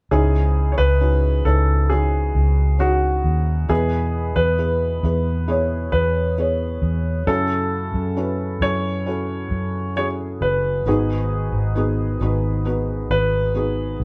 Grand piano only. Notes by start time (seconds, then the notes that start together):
0.11 G#4
0.72 C#5
0.78 B4
1.45 A4
1.90 G#4
2.80 F#4
3.70 G#4
4.36 B4
5.92 B4
7.27 A4
8.62 C#5
9.97 C#5
10.42 B4
13.11 B4